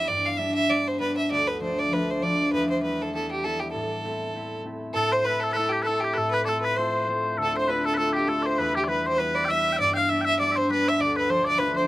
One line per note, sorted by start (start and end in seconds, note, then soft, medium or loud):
0.00 0.14 E2 medium
0.00 0.14 G3 soft
0.00 1.60 A3 soft
0.00 0.38 B3 soft
0.00 0.39 D4 soft
0.00 1.66 E4 soft
0.08 1.35 G2 soft
0.08 0.27 D5 medium
0.26 0.39 F5 medium
0.38 0.68 G3 soft
0.38 0.70 B3 soft
0.38 0.70 D4 soft
0.38 0.54 E5 medium
0.55 0.71 E5 loud
0.70 0.99 G3 soft
0.70 1.00 B3 soft
0.70 1.00 D4 soft
0.70 0.89 D5 medium
0.88 0.99 C5 medium
1.00 1.35 G3 soft
1.00 2.83 B3 soft
1.00 1.61 D4 soft
1.00 1.15 B4 medium
1.17 1.29 E5 medium
1.31 2.56 D2 medium
1.31 1.49 D5 medium
1.47 1.61 B4 medium
1.60 1.90 F3 soft
1.60 1.92 A3 soft
1.60 1.94 D4 soft
1.60 1.80 C5 medium
1.79 1.95 D5 medium
1.90 2.21 F3 soft
1.90 2.22 A3 soft
1.90 2.23 D4 medium
1.90 2.12 B4 medium
2.11 2.24 C5 medium
2.22 2.56 F3 soft
2.22 4.04 A3 soft
2.22 5.03 D4 medium
2.22 2.52 D5 medium
2.53 3.78 E2 medium
2.53 2.68 B4 medium
2.70 2.82 C5 medium
2.81 3.13 G3 soft
2.81 3.14 B3 soft
2.81 3.04 B4 medium
2.86 3.15 E4 soft
3.02 3.14 A4 medium
3.14 3.43 G3 soft
3.14 3.45 B3 soft
3.14 3.45 E4 soft
3.14 3.29 A4 medium
3.32 3.46 G4 medium
3.44 3.78 G3 soft
3.44 4.11 B3 soft
3.44 4.05 E4 medium
3.44 3.61 A4 medium
3.60 3.71 G4 medium
3.72 4.94 A2 soft
3.72 4.60 A4 medium
4.05 4.33 A3 soft
4.05 4.34 C4 soft
4.05 4.36 E4 soft
4.34 4.63 A3 soft
4.34 4.64 C4 soft
4.34 4.66 E4 soft
4.63 5.25 A3 soft
4.63 5.26 C4 soft
4.63 5.26 E4 soft
4.94 6.16 A2 medium
4.94 5.14 A4 loud
4.94 5.12 A4 medium
5.12 5.27 C5 medium
5.12 5.26 C5 medium
5.25 5.55 A3 soft
5.25 5.57 C4 soft
5.25 5.58 E4 soft
5.25 5.42 B4 medium
5.25 5.43 B4 medium
5.41 5.52 A4 medium
5.41 5.53 A4 medium
5.53 5.86 A3 soft
5.53 5.71 A4 medium
5.53 5.72 A4 medium
5.53 5.56 B4 medium
5.57 5.87 C4 soft
5.57 5.88 E4 medium
5.69 5.83 G4 medium
5.69 5.82 G4 medium
5.82 6.02 A4 medium
5.82 6.04 A4 medium
5.82 5.86 B4 medium
5.87 6.46 A3 soft
5.87 6.47 C4 soft
5.87 6.54 E4 soft
6.00 6.16 G4 medium
6.04 6.14 G4 medium
6.14 7.42 A2 medium
6.14 6.30 A4 medium
6.14 6.34 A4 medium
6.14 6.17 B4 medium
6.31 6.45 B4 medium
6.45 6.77 A3 soft
6.45 6.78 C4 soft
6.45 6.78 F4 soft
6.45 6.61 A4 medium
6.45 6.64 A4 medium
6.45 6.49 D5 medium
6.61 6.77 B4 medium
6.61 6.78 B4 medium
6.76 7.08 A3 soft
6.76 7.08 C4 soft
6.76 7.09 F4 soft
6.76 7.07 C5 medium
6.76 7.38 C5 medium
7.08 7.67 A3 soft
7.08 8.94 C4 soft
7.08 7.68 F4 soft
7.38 8.63 D2 medium
7.38 7.56 A4 medium
7.43 7.56 A4 medium
7.56 7.68 C5 medium
7.56 7.72 C5 medium
7.68 7.97 A3 soft
7.68 7.98 D4 soft
7.68 7.98 F4 soft
7.68 7.85 B4 medium
7.85 7.94 A4 medium
7.85 7.98 A4 medium
7.94 8.27 A3 soft
7.94 8.13 A4 medium
7.94 7.97 B4 medium
7.98 8.28 D4 soft
7.98 8.28 F4 medium
7.98 8.14 A4 medium
8.13 8.29 G4 medium
8.27 11.29 A3 soft
8.27 10.11 D4 soft
8.27 8.65 F4 soft
8.27 8.48 A4 medium
8.27 8.42 A4 medium
8.42 8.58 C5 medium
8.42 8.46 D5 medium
8.46 8.62 C5 medium
8.58 9.83 E2 medium
8.58 8.75 B4 medium
8.58 8.76 B4 loud
8.75 8.84 G4 medium
8.75 8.88 G4 medium
8.84 9.18 G3 soft
8.84 8.88 D5 medium
8.88 9.19 B3 soft
8.88 9.19 E4 soft
8.88 9.06 B4 medium
8.88 9.04 B4 medium
9.06 9.18 C5 medium
9.06 9.21 C5 loud
9.18 9.48 G3 soft
9.18 9.49 B3 soft
9.18 9.49 E4 soft
9.18 9.45 B4 medium
9.18 9.37 B4 medium
9.35 9.52 D5 medium
9.45 9.83 G3 soft
9.45 9.73 E5 medium
9.45 9.48 G5 medium
9.49 10.10 B3 soft
9.49 11.35 E4 soft
9.49 9.80 E5 medium
9.73 9.80 E5 soft
9.73 9.77 G5 soft
9.80 11.03 G2 medium
9.80 9.95 D5 medium
9.80 9.94 D5 medium
9.94 10.11 F5 medium
9.94 10.09 F5 medium
9.94 9.97 G5 medium
10.09 10.39 G3 soft
10.09 10.40 B3 soft
10.09 10.41 D4 soft
10.09 10.21 E5 medium
10.09 10.26 E5 medium
10.21 10.39 E5 medium
10.21 10.25 G5 medium
10.26 10.38 E5 loud
10.39 10.68 G3 soft
10.39 10.69 B3 soft
10.39 10.69 D4 soft
10.39 10.51 D5 medium
10.39 10.59 D5 medium
10.51 10.56 E5 medium
10.56 10.71 C5 medium
10.56 10.69 C5 medium
10.69 11.03 G3 soft
10.69 11.87 B3 soft
10.69 11.29 D4 medium
10.69 10.88 B4 medium
10.69 10.90 B4 medium
10.88 11.01 E5 medium
10.88 11.02 E5 medium
10.99 11.87 D2 medium
10.99 11.16 D5 medium
11.16 11.30 B4 medium
11.16 11.31 B4 medium
11.29 11.57 F3 soft
11.29 11.59 A3 soft
11.29 11.60 D4 soft
11.29 11.46 C5 medium
11.29 11.45 C5 medium
11.45 11.60 D5 medium
11.59 11.87 F3 soft
11.59 11.87 A3 soft
11.59 11.87 D4 medium
11.59 11.75 B4 medium
11.59 11.77 B4 medium
11.76 11.87 C5 medium